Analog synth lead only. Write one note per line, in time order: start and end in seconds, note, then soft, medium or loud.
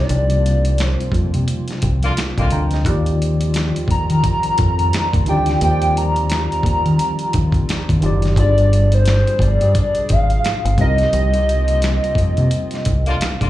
0.00 0.87 D5 medium
0.87 1.30 C5 medium
3.91 5.23 A#5 loud
5.29 5.60 G5 medium
5.63 5.99 G5 loud
5.98 8.03 A#5 loud
8.39 8.96 D5 loud
8.94 9.44 C5 medium
9.42 10.13 D5 loud
10.11 10.79 F5 loud
10.81 13.17 D#5 loud